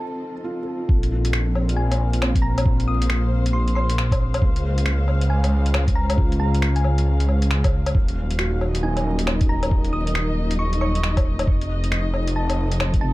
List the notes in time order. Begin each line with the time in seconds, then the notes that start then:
Already playing: F3 C4 D#4 F4 A4 D#5 A5
0.44 F4
0.63 A4
0.89 A#1 A#3, kick
1.03 closed hi-hat
1.11 F4
1.25 closed hi-hat
1.33 finger snap
1.55 low woodblock
1.60 C5
1.66 F5, closed hi-hat
1.76 G#5
1.92 closed hi-hat, low woodblock
2.13 closed hi-hat
2.21 C4, finger snap, low woodblock
2.35 kick, closed hi-hat
2.42 A#5
2.58 closed hi-hat, low woodblock
2.66 kick
2.80 closed hi-hat
2.88 D#6
3.02 closed hi-hat
3.10 finger snap
3.46 closed hi-hat
3.53 C6
3.68 closed hi-hat
3.75 C6, low woodblock
3.90 closed hi-hat
3.98 finger snap
4.11 kick, closed hi-hat, low woodblock
4.34 closed hi-hat, low woodblock
4.42 C#2 G#3, kick
4.56 C#4, closed hi-hat
4.78 closed hi-hat
4.86 finger snap
5.08 low woodblock
5.21 closed hi-hat
5.30 G#5
5.44 closed hi-hat, low woodblock
5.66 closed hi-hat
5.74 finger snap, low woodblock
5.88 kick, closed hi-hat
5.96 A#5
6.10 closed hi-hat, low woodblock
6.17 F4, kick
6.32 closed hi-hat
6.40 G#4 A#5
6.54 closed hi-hat
6.62 finger snap
6.76 G#5, closed hi-hat
6.84 low woodblock
6.98 closed hi-hat
7.20 closed hi-hat
7.29 low woodblock
7.42 closed hi-hat
7.51 finger snap
7.64 kick, closed hi-hat, low woodblock
7.86 closed hi-hat, low woodblock
7.95 D#1 F#3, kick
8.08 closed hi-hat
8.22 A#3
8.28 D#4, closed hi-hat
8.39 F#4, finger snap
8.61 low woodblock
8.69 D#5
8.75 A#4, closed hi-hat
8.83 D#4 G#5
8.97 closed hi-hat, low woodblock
9.06 C#4
9.19 closed hi-hat
9.27 finger snap, low woodblock
9.41 kick, closed hi-hat
9.49 A#5
9.63 closed hi-hat, low woodblock
9.71 kick
9.85 closed hi-hat
9.93 D#6
10.07 closed hi-hat
10.15 finger snap
10.51 closed hi-hat
10.59 C#6
10.73 closed hi-hat
10.81 C#6, low woodblock
10.95 closed hi-hat
11.03 finger snap
11.17 kick, closed hi-hat, low woodblock
11.39 closed hi-hat, low woodblock
11.47 F1 F3, kick
11.61 closed hi-hat
11.68 C4
11.84 closed hi-hat
11.92 finger snap
12.14 low woodblock
12.27 A4, closed hi-hat
12.36 A5
12.50 closed hi-hat, low woodblock
12.72 closed hi-hat
12.80 finger snap, low woodblock
12.94 kick, closed hi-hat
13.01 C3 A5